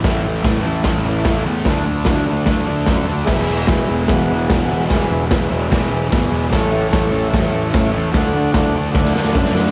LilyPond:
<<
  \new Staff \with { instrumentName = "Transistor combo organ" } { \time 4/4 \key e \mixolydian \tempo 4 = 148 r1 | r1 | <gis' b' e''>4 <gis' b' e''>4 <gis' b' fis''>4 <gis' b' fis''>4 | <gis' b' e''>4 <gis' b' e''>4 <gis' b' e''>4 <gis' b' e''>4 |
<a' cis'' e''>4 <a' cis'' e''>4 <a' cis'' e''>4 <a' cis'' e''>4 | <a' d'' fis''>4 <a' d'' fis''>4 <a' d'' fis''>4 <a' d'' fis''>4 | }
  \new Staff \with { instrumentName = "Distorted electric guitar" } { \clef bass \time 4/4 \key e \mixolydian <a, e a>8 <e a>8 <a, e a>8 <e a>8 <a, e a>8 <a, e a>8 <a, e a>8 <e a>8 | <d a d'>8 <a d'>8 <d a d'>8 <a d'>8 <d a d'>8 <d a d'>8 <d a d'>8 <a d'>8 | <e, b, e>8 <b, e>8 <e, b, e>8 <b, e>8 <e, b, e>8 <e, b, e>8 <e, b, e>8 <b, e>8 | <e, b, e>8 <b, e>8 <e, b, e>8 <b, e>8 <e, b, e>8 <e, b, e>8 <e, b, e>8 <b, e>8 |
<a, e a>8 <e a>8 <a, e a>8 <e a>8 <a, e a>8 <a, e a>8 <a, e a>8 <e a>8 | <d a d'>8 <a d'>8 <d a d'>8 <a d'>8 <d a d'>8 <d a d'>8 <d a d'>8 <a d'>8 | }
  \new Staff \with { instrumentName = "Picked electric bass" } { \clef bass \time 4/4 \key e \mixolydian a,,8 a,,8 a,,8 a,,8 a,,8 a,,8 a,,8 e,8 | d,8 d,8 d,8 d,8 d,8 d,8 fis,8 d,8 | e,,8 e,,8 e,,8 e,,8 e,,8 e,,8 e,,8 e,,8 | e,,8 e,,8 e,,8 e,,8 e,,8 e,,8 gis,,8 e,,8 |
a,,8 a,,8 a,,8 a,,8 a,,8 a,,8 a,,8 a,,8 | d,8 d,8 d,8 d,8 d,8 d,8 fis,8 fis,8 | }
  \new DrumStaff \with { instrumentName = "Drums" } \drummode { \time 4/4 <hho bd sn>4 <hho bd sn>4 <hho bd sn>4 <hho bd sn>4 | <hho bd sn>4 <hho bd sn>4 <hho bd sn>4 <hho bd sn>4 | <cymc bd sn>4 <hho bd sn>4 <hho bd sn>4 <hho bd sn>4 | <hho bd sn>4 <hho bd sn>4 <hho bd sn>4 <hho bd sn>4 |
<hho bd sn>4 <hho bd sn>4 <hho bd sn>4 <hho bd sn>4 | <hho bd sn>4 <hho bd sn>4 <bd sn>16 sn16 sn16 sn16 <bd sn>16 sn16 sn16 sn16 | }
>>